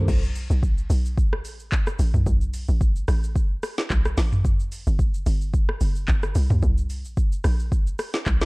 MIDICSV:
0, 0, Header, 1, 4, 480
1, 0, Start_track
1, 0, Tempo, 545455
1, 73, Time_signature, 4, 2, 24, 8
1, 7439, End_track
2, 0, Start_track
2, 0, Title_t, "Tine electric piano"
2, 0, Program_c, 0, 4
2, 0, Control_c, 0, 64, 127
2, 0, Note_on_c, 0, 36, 82
2, 0, Note_on_c, 0, 51, 78
2, 0, Note_on_c, 0, 55, 72
2, 0, Note_on_c, 0, 58, 77
2, 0, Note_on_c, 0, 65, 56
2, 0, Note_on_c, 0, 67, 60
2, 0, Note_on_c, 0, 69, 60
2, 0, Note_on_c, 0, 72, 68
2, 85, Control_c, 0, 64, 0
2, 89, Note_off_c, 0, 55, 0
2, 89, Note_off_c, 0, 67, 0
2, 92, Note_off_c, 0, 36, 0
2, 92, Note_off_c, 0, 51, 0
2, 92, Note_off_c, 0, 58, 0
2, 92, Note_off_c, 0, 65, 0
2, 194, Note_off_c, 0, 72, 0
2, 196, Note_off_c, 0, 69, 0
2, 7439, End_track
3, 0, Start_track
3, 0, Title_t, "Log drum bass"
3, 0, Program_c, 1, 39
3, 72, Note_on_c, 1, 35, 111
3, 423, Note_off_c, 1, 35, 0
3, 442, Note_on_c, 1, 35, 92
3, 771, Note_off_c, 1, 35, 0
3, 791, Note_on_c, 1, 35, 102
3, 1272, Note_on_c, 1, 33, 96
3, 1285, Note_off_c, 1, 35, 0
3, 1516, Note_on_c, 1, 35, 99
3, 1529, Note_off_c, 1, 33, 0
3, 1740, Note_off_c, 1, 35, 0
3, 1753, Note_on_c, 1, 33, 98
3, 1877, Note_off_c, 1, 33, 0
3, 1884, Note_on_c, 1, 35, 89
3, 1986, Note_off_c, 1, 35, 0
3, 1993, Note_on_c, 1, 35, 107
3, 2343, Note_off_c, 1, 35, 0
3, 2364, Note_on_c, 1, 33, 90
3, 2692, Note_off_c, 1, 33, 0
3, 2713, Note_on_c, 1, 33, 103
3, 3165, Note_off_c, 1, 33, 0
3, 3436, Note_on_c, 1, 35, 86
3, 3660, Note_off_c, 1, 35, 0
3, 3674, Note_on_c, 1, 33, 95
3, 3913, Note_on_c, 1, 31, 101
3, 3926, Note_off_c, 1, 33, 0
3, 4263, Note_off_c, 1, 31, 0
3, 4286, Note_on_c, 1, 31, 102
3, 4613, Note_off_c, 1, 31, 0
3, 4632, Note_on_c, 1, 31, 116
3, 5084, Note_off_c, 1, 31, 0
3, 5112, Note_on_c, 1, 30, 96
3, 5339, Note_off_c, 1, 30, 0
3, 5354, Note_on_c, 1, 31, 96
3, 5579, Note_off_c, 1, 31, 0
3, 5591, Note_on_c, 1, 36, 101
3, 5716, Note_off_c, 1, 36, 0
3, 5723, Note_on_c, 1, 38, 82
3, 5826, Note_off_c, 1, 38, 0
3, 5832, Note_on_c, 1, 36, 118
3, 6204, Note_on_c, 1, 34, 92
3, 6217, Note_off_c, 1, 36, 0
3, 6532, Note_off_c, 1, 34, 0
3, 6553, Note_on_c, 1, 34, 96
3, 7005, Note_off_c, 1, 34, 0
3, 7274, Note_on_c, 1, 35, 93
3, 7439, Note_off_c, 1, 35, 0
3, 7439, End_track
4, 0, Start_track
4, 0, Title_t, "Drums"
4, 72, Note_on_c, 9, 49, 105
4, 72, Note_on_c, 9, 82, 84
4, 73, Note_on_c, 9, 36, 115
4, 160, Note_off_c, 9, 49, 0
4, 160, Note_off_c, 9, 82, 0
4, 161, Note_off_c, 9, 36, 0
4, 205, Note_on_c, 9, 82, 58
4, 293, Note_off_c, 9, 82, 0
4, 312, Note_on_c, 9, 46, 51
4, 312, Note_on_c, 9, 82, 89
4, 400, Note_off_c, 9, 46, 0
4, 400, Note_off_c, 9, 82, 0
4, 444, Note_on_c, 9, 82, 56
4, 532, Note_off_c, 9, 82, 0
4, 553, Note_on_c, 9, 36, 106
4, 556, Note_on_c, 9, 82, 69
4, 641, Note_off_c, 9, 36, 0
4, 644, Note_off_c, 9, 82, 0
4, 685, Note_on_c, 9, 82, 58
4, 773, Note_off_c, 9, 82, 0
4, 793, Note_on_c, 9, 46, 55
4, 793, Note_on_c, 9, 82, 98
4, 881, Note_off_c, 9, 46, 0
4, 881, Note_off_c, 9, 82, 0
4, 928, Note_on_c, 9, 82, 57
4, 1016, Note_off_c, 9, 82, 0
4, 1034, Note_on_c, 9, 36, 107
4, 1038, Note_on_c, 9, 82, 68
4, 1122, Note_off_c, 9, 36, 0
4, 1126, Note_off_c, 9, 82, 0
4, 1169, Note_on_c, 9, 37, 100
4, 1257, Note_off_c, 9, 37, 0
4, 1274, Note_on_c, 9, 46, 55
4, 1274, Note_on_c, 9, 82, 88
4, 1362, Note_off_c, 9, 46, 0
4, 1362, Note_off_c, 9, 82, 0
4, 1404, Note_on_c, 9, 82, 50
4, 1492, Note_off_c, 9, 82, 0
4, 1514, Note_on_c, 9, 39, 99
4, 1515, Note_on_c, 9, 36, 103
4, 1515, Note_on_c, 9, 82, 64
4, 1602, Note_off_c, 9, 39, 0
4, 1603, Note_off_c, 9, 36, 0
4, 1603, Note_off_c, 9, 82, 0
4, 1644, Note_on_c, 9, 82, 62
4, 1647, Note_on_c, 9, 37, 100
4, 1732, Note_off_c, 9, 82, 0
4, 1735, Note_off_c, 9, 37, 0
4, 1752, Note_on_c, 9, 46, 63
4, 1752, Note_on_c, 9, 82, 103
4, 1840, Note_off_c, 9, 46, 0
4, 1840, Note_off_c, 9, 82, 0
4, 1884, Note_on_c, 9, 45, 82
4, 1885, Note_on_c, 9, 82, 59
4, 1972, Note_off_c, 9, 45, 0
4, 1973, Note_off_c, 9, 82, 0
4, 1992, Note_on_c, 9, 36, 112
4, 1992, Note_on_c, 9, 82, 84
4, 2080, Note_off_c, 9, 36, 0
4, 2080, Note_off_c, 9, 82, 0
4, 2123, Note_on_c, 9, 82, 60
4, 2211, Note_off_c, 9, 82, 0
4, 2232, Note_on_c, 9, 46, 51
4, 2232, Note_on_c, 9, 82, 89
4, 2320, Note_off_c, 9, 46, 0
4, 2320, Note_off_c, 9, 82, 0
4, 2361, Note_on_c, 9, 82, 56
4, 2449, Note_off_c, 9, 82, 0
4, 2472, Note_on_c, 9, 36, 105
4, 2473, Note_on_c, 9, 82, 73
4, 2560, Note_off_c, 9, 36, 0
4, 2561, Note_off_c, 9, 82, 0
4, 2604, Note_on_c, 9, 82, 58
4, 2692, Note_off_c, 9, 82, 0
4, 2711, Note_on_c, 9, 37, 101
4, 2712, Note_on_c, 9, 46, 56
4, 2712, Note_on_c, 9, 82, 98
4, 2799, Note_off_c, 9, 37, 0
4, 2800, Note_off_c, 9, 46, 0
4, 2800, Note_off_c, 9, 82, 0
4, 2847, Note_on_c, 9, 82, 58
4, 2935, Note_off_c, 9, 82, 0
4, 2953, Note_on_c, 9, 36, 110
4, 2955, Note_on_c, 9, 82, 69
4, 3041, Note_off_c, 9, 36, 0
4, 3043, Note_off_c, 9, 82, 0
4, 3195, Note_on_c, 9, 46, 54
4, 3195, Note_on_c, 9, 82, 92
4, 3196, Note_on_c, 9, 37, 99
4, 3283, Note_off_c, 9, 46, 0
4, 3283, Note_off_c, 9, 82, 0
4, 3284, Note_off_c, 9, 37, 0
4, 3326, Note_on_c, 9, 82, 53
4, 3327, Note_on_c, 9, 38, 66
4, 3414, Note_off_c, 9, 82, 0
4, 3415, Note_off_c, 9, 38, 0
4, 3435, Note_on_c, 9, 39, 99
4, 3436, Note_on_c, 9, 36, 104
4, 3436, Note_on_c, 9, 82, 65
4, 3523, Note_off_c, 9, 39, 0
4, 3524, Note_off_c, 9, 36, 0
4, 3524, Note_off_c, 9, 82, 0
4, 3566, Note_on_c, 9, 82, 56
4, 3569, Note_on_c, 9, 37, 95
4, 3654, Note_off_c, 9, 82, 0
4, 3657, Note_off_c, 9, 37, 0
4, 3674, Note_on_c, 9, 46, 64
4, 3674, Note_on_c, 9, 82, 111
4, 3676, Note_on_c, 9, 38, 67
4, 3762, Note_off_c, 9, 46, 0
4, 3762, Note_off_c, 9, 82, 0
4, 3764, Note_off_c, 9, 38, 0
4, 3806, Note_on_c, 9, 45, 82
4, 3807, Note_on_c, 9, 82, 60
4, 3894, Note_off_c, 9, 45, 0
4, 3895, Note_off_c, 9, 82, 0
4, 3913, Note_on_c, 9, 36, 116
4, 3915, Note_on_c, 9, 82, 85
4, 4001, Note_off_c, 9, 36, 0
4, 4003, Note_off_c, 9, 82, 0
4, 4046, Note_on_c, 9, 82, 56
4, 4134, Note_off_c, 9, 82, 0
4, 4153, Note_on_c, 9, 46, 52
4, 4153, Note_on_c, 9, 82, 91
4, 4241, Note_off_c, 9, 46, 0
4, 4241, Note_off_c, 9, 82, 0
4, 4284, Note_on_c, 9, 82, 54
4, 4372, Note_off_c, 9, 82, 0
4, 4392, Note_on_c, 9, 36, 104
4, 4393, Note_on_c, 9, 82, 74
4, 4480, Note_off_c, 9, 36, 0
4, 4481, Note_off_c, 9, 82, 0
4, 4524, Note_on_c, 9, 82, 59
4, 4612, Note_off_c, 9, 82, 0
4, 4632, Note_on_c, 9, 46, 59
4, 4632, Note_on_c, 9, 82, 95
4, 4720, Note_off_c, 9, 46, 0
4, 4720, Note_off_c, 9, 82, 0
4, 4764, Note_on_c, 9, 82, 58
4, 4852, Note_off_c, 9, 82, 0
4, 4872, Note_on_c, 9, 36, 108
4, 4873, Note_on_c, 9, 82, 71
4, 4960, Note_off_c, 9, 36, 0
4, 4961, Note_off_c, 9, 82, 0
4, 5006, Note_on_c, 9, 37, 99
4, 5094, Note_off_c, 9, 37, 0
4, 5111, Note_on_c, 9, 46, 54
4, 5111, Note_on_c, 9, 82, 91
4, 5199, Note_off_c, 9, 46, 0
4, 5199, Note_off_c, 9, 82, 0
4, 5240, Note_on_c, 9, 82, 52
4, 5328, Note_off_c, 9, 82, 0
4, 5351, Note_on_c, 9, 39, 97
4, 5352, Note_on_c, 9, 82, 63
4, 5353, Note_on_c, 9, 36, 95
4, 5439, Note_off_c, 9, 39, 0
4, 5440, Note_off_c, 9, 82, 0
4, 5441, Note_off_c, 9, 36, 0
4, 5481, Note_on_c, 9, 82, 57
4, 5484, Note_on_c, 9, 37, 99
4, 5569, Note_off_c, 9, 82, 0
4, 5572, Note_off_c, 9, 37, 0
4, 5589, Note_on_c, 9, 46, 63
4, 5589, Note_on_c, 9, 82, 107
4, 5677, Note_off_c, 9, 46, 0
4, 5677, Note_off_c, 9, 82, 0
4, 5722, Note_on_c, 9, 45, 86
4, 5723, Note_on_c, 9, 82, 60
4, 5810, Note_off_c, 9, 45, 0
4, 5811, Note_off_c, 9, 82, 0
4, 5831, Note_on_c, 9, 36, 114
4, 5831, Note_on_c, 9, 82, 83
4, 5919, Note_off_c, 9, 36, 0
4, 5919, Note_off_c, 9, 82, 0
4, 5962, Note_on_c, 9, 82, 59
4, 6050, Note_off_c, 9, 82, 0
4, 6070, Note_on_c, 9, 46, 50
4, 6070, Note_on_c, 9, 82, 85
4, 6158, Note_off_c, 9, 46, 0
4, 6158, Note_off_c, 9, 82, 0
4, 6202, Note_on_c, 9, 82, 56
4, 6290, Note_off_c, 9, 82, 0
4, 6311, Note_on_c, 9, 36, 104
4, 6312, Note_on_c, 9, 82, 70
4, 6399, Note_off_c, 9, 36, 0
4, 6400, Note_off_c, 9, 82, 0
4, 6443, Note_on_c, 9, 82, 59
4, 6531, Note_off_c, 9, 82, 0
4, 6549, Note_on_c, 9, 37, 104
4, 6550, Note_on_c, 9, 46, 58
4, 6550, Note_on_c, 9, 82, 94
4, 6637, Note_off_c, 9, 37, 0
4, 6638, Note_off_c, 9, 46, 0
4, 6638, Note_off_c, 9, 82, 0
4, 6684, Note_on_c, 9, 82, 56
4, 6772, Note_off_c, 9, 82, 0
4, 6792, Note_on_c, 9, 36, 108
4, 6794, Note_on_c, 9, 82, 69
4, 6880, Note_off_c, 9, 36, 0
4, 6882, Note_off_c, 9, 82, 0
4, 6925, Note_on_c, 9, 82, 52
4, 7013, Note_off_c, 9, 82, 0
4, 7031, Note_on_c, 9, 46, 54
4, 7031, Note_on_c, 9, 82, 91
4, 7032, Note_on_c, 9, 37, 103
4, 7119, Note_off_c, 9, 46, 0
4, 7119, Note_off_c, 9, 82, 0
4, 7120, Note_off_c, 9, 37, 0
4, 7160, Note_on_c, 9, 82, 54
4, 7162, Note_on_c, 9, 38, 65
4, 7248, Note_off_c, 9, 82, 0
4, 7250, Note_off_c, 9, 38, 0
4, 7272, Note_on_c, 9, 39, 100
4, 7272, Note_on_c, 9, 82, 62
4, 7274, Note_on_c, 9, 36, 98
4, 7360, Note_off_c, 9, 39, 0
4, 7360, Note_off_c, 9, 82, 0
4, 7362, Note_off_c, 9, 36, 0
4, 7402, Note_on_c, 9, 82, 61
4, 7405, Note_on_c, 9, 37, 93
4, 7405, Note_on_c, 9, 38, 71
4, 7439, Note_off_c, 9, 37, 0
4, 7439, Note_off_c, 9, 38, 0
4, 7439, Note_off_c, 9, 82, 0
4, 7439, End_track
0, 0, End_of_file